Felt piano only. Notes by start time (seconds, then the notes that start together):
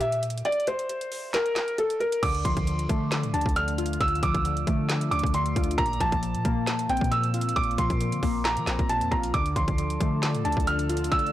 0.00 E5
0.45 D5
0.68 C5
1.34 A#4
1.78 A4
2.00 A#4
2.23 D6
2.45 C6
3.34 A5
3.56 F6
4.01 E6
4.23 D6
5.11 D6
5.34 C6
5.78 A#5
6.01 A5
6.90 G5
7.11 E6
7.56 D6
7.79 C6
8.45 A#5
8.89 A5
9.11 A#5
9.34 D6
9.56 C6
10.45 A5
10.67 F6
11.12 E6